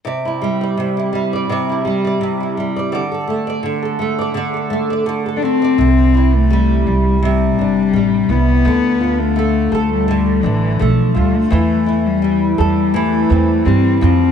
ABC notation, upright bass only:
X:1
M:4/4
L:1/8
Q:"Swing 16ths" 1/4=84
K:C
V:1 name="Upright bass" clef=bass
z8 | z8 | C,,3 C,,2 G,,, A,,, C,, | D,,3 D,,2 A,,, B,,, D,, |
E,,3 E,,2 E,, G,, F,, |]